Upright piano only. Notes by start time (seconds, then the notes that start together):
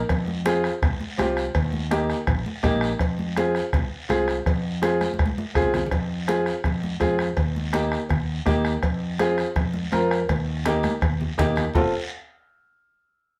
0.45 C4 F4 G#4
1.17 C4 F4 G4
1.91 A#3 D#4 G4
2.63 A#3 D#4 G4
3.37 C4 F4 G#4
4.09 C4 F4 G#4
4.82 C4 F4 G#4
5.54 C4 F4 G#4
6.27 C4 F4 G#4
7.00 C4 F4 G#4
7.73 A#3 D#4 G4
8.46 A#3 D#4 G4
9.19 C4 F4 G#4
9.92 C4 F4 A#4
10.66 A#3 D#4 G4
11.38 A#3 D#4 G4
11.75 C4 F4 A4